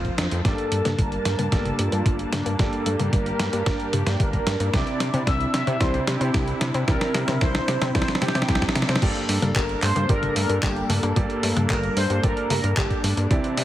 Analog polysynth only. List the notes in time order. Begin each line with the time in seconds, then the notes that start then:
Already playing: F4 C5
0.45 A4
0.99 A#4
1.52 A#4
1.79 F4
2.59 A4
3.13 A#4
3.66 A#4
3.93 G4
4.20 A#4
4.73 D5
5.27 E5
5.53 E5
5.80 C5
6.07 G4
6.88 A#4
7.41 C5
7.95 C5
8.22 G4
9.56 A#4
9.82 C5
10.09 A#4
10.36 A#4
10.63 G4
11.70 A#4
11.97 C5
12.24 A#4
12.50 A#4
12.77 G4